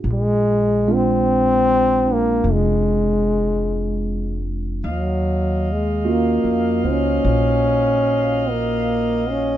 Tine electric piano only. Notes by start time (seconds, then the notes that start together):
0.88 G#3 C4 D4 F4
2.05 C4 D4
6.05 A#3 C#4 F4 F#4
6.84 A#3 D#4 C5